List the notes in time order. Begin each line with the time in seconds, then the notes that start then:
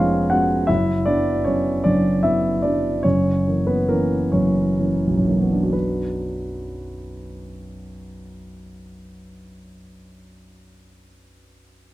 Already playing: F1 F2 G#3 B3 C#4 D#4 F4 C#5 D#5 F5
0.30 G#3 B3 C#4 F#4 F#5
0.67 F#1 F#2 E4 E5
1.06 F#3 B3 D4 D5
1.44 F#3 B3 C#4 C#5
1.84 F#1 F#2 D4 D5
2.23 F#3 B3 E4 E5
2.62 F#3 B3 D4 D5
3.03 F#1 F#2 C#4 C#5
3.47 E3 A#3 C#4
3.67 B3 B4
3.89 E3 A#3 C#4 A#4
4.32 F#1 F#2 C#4 C#5
4.79 E3 A#3 C#4
5.07 B1
5.18 F#2
5.27 E3 F#3 A#3 C#4
5.41 B3
5.52 D4
5.63 F#4
5.73 B4